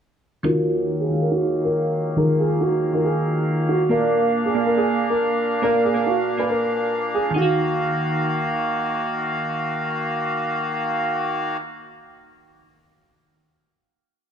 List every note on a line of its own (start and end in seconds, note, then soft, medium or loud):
0.43 0.90 D#3 medium
0.43 3.87 D#3 medium
0.43 3.87 F#3 medium
0.43 3.87 A#3 medium
0.43 0.91 D#4 medium
0.43 0.91 F4 medium
0.43 0.92 F#4 loud
0.43 0.96 A#4 loud
0.43 7.32 F5 medium
1.00 1.19 G#4 medium
1.09 1.71 D#3 medium
1.09 1.71 D#4 medium
1.09 1.72 G#4 medium
1.09 1.72 F5 medium
1.21 1.30 A#4 medium
1.31 1.62 F#4 medium
1.64 2.15 A#4 medium
2.16 2.40 D#3 medium
2.16 2.41 D#4 medium
2.16 2.41 F4 medium
2.16 2.42 G#4 loud
2.16 2.37 A#4 medium
2.40 2.58 G#4 medium
2.49 2.80 D#3 medium
2.49 2.81 D#4 medium
2.49 2.81 F4 medium
2.49 2.82 G#4 medium
2.61 2.92 F#4 medium
2.92 3.54 D#3 medium
2.92 3.55 D#4 medium
2.92 3.55 F4 medium
2.92 3.56 F#4 medium
2.92 3.03 A#4 medium
3.04 3.65 G#4 medium
3.69 3.88 F#4 medium
3.89 7.32 A#2 medium
3.89 4.36 A#3 medium
3.89 7.32 A#3 medium
3.89 7.32 D4 medium
3.89 4.36 A#4 loud
3.89 4.42 A#4 medium
3.89 4.37 D5 loud
3.89 4.37 F5 loud
4.45 4.64 G#4 medium
4.54 5.16 A#3 medium
4.54 5.17 A#4 medium
4.54 5.17 D5 medium
4.54 5.18 F5 medium
4.66 4.75 A#4 medium
4.77 5.08 G#4 medium
5.10 5.60 A#4 medium
5.62 5.86 A#3 medium
5.62 5.86 A#4 medium
5.62 5.82 A#4 loud
5.62 5.86 D5 medium
5.62 5.87 F5 loud
5.85 6.04 G#4 medium
5.94 6.25 A#3 medium
5.94 6.26 A#4 medium
5.94 6.26 D5 medium
5.94 6.27 F5 medium
6.06 6.37 F#4 medium
6.37 6.99 A#3 medium
6.37 7.00 A#4 medium
6.37 6.48 B4 medium
6.37 7.00 D5 medium
6.37 7.01 G#5 medium
6.49 7.10 A#4 medium
7.14 7.33 G#4 medium
7.30 11.98 D#3 medium
7.30 12.02 D#4 medium
7.36 11.57 D#3 medium
7.36 11.57 A#3 medium
7.36 8.61 F#4 medium
7.36 11.57 F#4 medium
7.36 11.57 F5 medium
7.36 12.05 F5 medium
7.41 12.09 F#4 medium